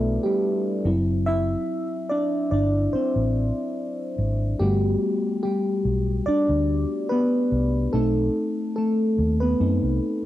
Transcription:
0.00 0.17 B1 medium
0.00 0.21 A3 medium
0.00 0.87 B3 medium
0.00 0.87 D4 medium
0.00 0.26 A4 medium
0.00 0.87 B4 medium
0.00 0.86 D5 loud
0.23 0.82 G3 medium
0.23 0.80 G4 medium
0.85 1.54 F#1 loud
0.85 2.06 F#3 medium
0.85 2.06 C4 medium
0.85 1.27 E4 medium
1.26 2.07 E4 medium
1.26 2.12 E5 loud
2.10 2.49 D4 medium
2.10 2.48 D5 medium
2.51 2.86 G1 medium
2.51 2.91 D4 medium
2.51 2.90 D5 medium
2.93 4.15 C4 medium
2.93 4.14 C5 medium
2.93 muted fingered electric bass stroke soft
3.16 3.50 A1 medium
4.18 4.53 G#1 medium
4.59 4.94 G1 loud
4.59 5.40 G3 medium
4.59 5.17 A3 medium
4.59 5.17 B3 medium
4.59 5.17 F#4 medium
4.59 5.39 G4 loud
5.43 6.23 G3 medium
5.43 6.29 G4 medium
5.85 6.19 B1 medium
6.26 7.07 D4 medium
6.26 7.12 D5 loud
6.26 muted fingered electric bass stroke soft
6.49 6.84 D2 medium
7.09 7.71 B3 medium
7.09 7.70 B4 loud
7.52 7.86 C2 medium
7.93 8.28 B1 loud
7.93 8.73 A3 medium
7.93 9.60 C4 medium
7.93 9.60 D#4 medium
7.93 8.75 A4 loud
8.76 9.37 A3 medium
8.76 9.42 A4 medium
9.18 9.53 D#2 medium
9.40 10.25 B3 medium
9.40 10.25 B4 medium
9.60 9.79 F#2 loud
9.60 9.98 A3 soft
9.60 9.98 C4 soft
9.60 9.98 D#4 medium
9.83 9.98 C2 medium

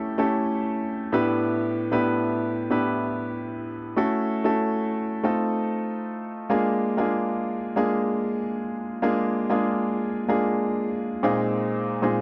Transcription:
0.00 0.18 A3 medium
0.00 0.18 C#4 medium
0.00 0.19 E4 medium
0.00 0.19 G4 medium
0.00 0.19 A4 medium
0.18 1.13 A3 medium
0.18 1.13 C#4 medium
0.18 1.12 E4 medium
0.18 1.12 G4 medium
0.18 1.14 A4 loud
1.12 1.76 A2 loud
1.12 1.76 B3 medium
1.12 1.76 D4 medium
1.12 1.76 E4 medium
1.12 1.77 G4 medium
1.12 1.77 B4 loud
1.92 2.52 A2 medium
1.92 2.52 B3 medium
1.92 2.52 D4 medium
1.92 2.52 E4 medium
1.92 2.52 G4 medium
1.92 2.52 B4 loud
2.70 3.67 A2 medium
2.70 3.67 B3 medium
2.70 3.67 D4 medium
2.70 3.67 E4 medium
2.70 3.67 G4 medium
2.70 3.67 B4 medium
3.97 4.33 A3 medium
3.97 4.33 C#4 medium
3.97 4.33 E4 medium
3.97 4.33 F#4 medium
3.97 4.33 A4 loud
4.44 5.04 A3 medium
4.44 5.05 C#4 medium
4.44 5.05 E4 medium
4.44 5.05 F#4 medium
4.44 5.05 A4 medium
5.23 6.19 A3 medium
5.23 6.20 C4 medium
5.23 6.20 D#4 medium
5.23 6.20 F4 medium
5.23 6.20 A4 medium
6.50 6.86 G#3 medium
6.50 6.86 A#3 medium
6.50 6.86 D4 medium
6.50 6.86 F4 medium
6.50 6.86 G#4 loud
6.97 7.57 G#3 medium
6.97 7.57 A#3 medium
6.97 7.57 D4 medium
6.97 7.58 F4 medium
6.97 7.58 G#4 medium
7.76 8.72 G#3 medium
7.76 8.72 A#3 medium
7.76 8.72 D4 medium
7.76 8.73 F4 medium
7.76 8.73 G#4 medium
9.02 9.38 G#3 medium
9.02 9.38 A#3 medium
9.02 9.39 D4 medium
9.02 9.39 F4 medium
9.02 9.39 G#4 loud
9.49 10.10 G#3 medium
9.49 10.10 A#3 medium
9.49 10.10 D4 medium
9.49 10.10 F4 medium
9.49 10.10 G#4 loud
10.28 11.22 G#3 medium
10.28 11.23 A#3 medium
10.28 11.24 D4 medium
10.28 11.23 F4 medium
10.28 11.23 G#4 medium
11.23 11.86 A#2 medium
11.23 11.87 G#3 medium
11.23 11.87 C4 medium
11.23 11.87 D#4 medium
11.23 11.87 F4 medium
11.23 11.87 G#4 loud
12.02 12.21 A#2 medium
12.02 12.21 G#3 medium
12.02 12.21 C4 medium
12.02 12.21 D#4 medium
12.02 12.21 F4 medium
12.02 12.21 G#4 medium

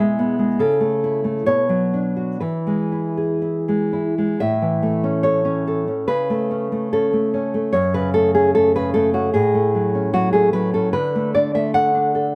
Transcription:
0.00 0.57 B2 medium
0.00 0.38 G#3 medium
0.00 0.60 E4 medium
0.00 0.60 G#4 medium
0.00 0.56 E5 loud
0.19 0.60 B3 medium
0.39 0.60 G#3 soft
0.59 1.44 C#3 medium
0.59 1.43 A4 medium
0.80 1.23 A3 medium
1.04 1.46 E4 medium
1.24 1.47 A3 soft
1.46 2.39 B2 medium
1.46 2.37 C#5 medium
1.69 2.41 F#3 medium
1.94 2.42 D4 soft
2.16 2.41 F#4 soft
2.40 4.36 E3 medium
2.40 3.88 B4 medium
2.67 3.67 G#3 soft
2.92 3.41 E4 soft
3.17 4.40 G#4 soft
3.42 3.92 E4 soft
3.68 4.17 G#3 soft
3.93 4.40 E4 soft
4.18 4.40 G#3 soft
4.40 6.04 A2 medium
4.40 5.21 E5 medium
4.62 5.86 E3 medium
4.83 6.07 A3 medium
5.04 5.44 C#4 medium
5.23 5.66 A4 medium
5.23 6.04 C#5 medium
5.45 5.86 C#4 medium
5.67 6.08 A4 medium
5.88 6.08 C#4 soft
6.08 7.70 C#3 medium
6.08 6.89 B4 medium
6.30 6.71 A3 soft
6.51 6.91 C#4 soft
6.72 7.12 A3 soft
6.93 7.33 C#4 medium
6.93 7.71 A4 medium
7.13 7.53 A3 medium
7.34 7.74 C#4 medium
7.54 7.74 A3 soft
7.73 9.29 F#2 medium
7.73 7.93 C#5 medium
7.94 8.74 C#3 medium
7.94 8.13 B4 medium
8.14 8.54 A3 soft
8.14 8.34 A4 medium
8.35 9.12 C#4 medium
8.35 8.54 G#4 medium
8.55 8.94 A3 medium
8.55 8.74 A4 medium
8.75 9.34 C#3 medium
8.75 8.93 B4 medium
8.94 9.34 A3 medium
8.94 9.14 A4 medium
9.14 9.33 C#4 soft
9.14 9.33 F#4 medium
9.34 10.90 A2 medium
9.34 10.11 G#4 medium
9.55 10.32 A3 medium
9.75 10.12 F#3 soft
9.95 10.73 C#4 soft
10.13 10.52 F#3 medium
10.13 10.32 F#4 medium
10.33 10.93 A3 soft
10.33 10.53 G#4 medium
10.53 10.94 F#3 medium
10.53 10.73 B4 medium
10.74 10.94 C#4 soft
10.74 10.93 A4 medium
10.93 12.35 D3 medium
10.93 11.32 B4 medium
11.15 11.53 A3 medium
11.35 11.93 D4 soft
11.35 11.55 D5 medium
11.55 12.35 A3 medium
11.55 11.74 E5 medium
11.74 12.14 A4 medium
11.74 12.35 F#5 medium
11.95 12.34 D4 soft
12.15 12.35 A4 medium

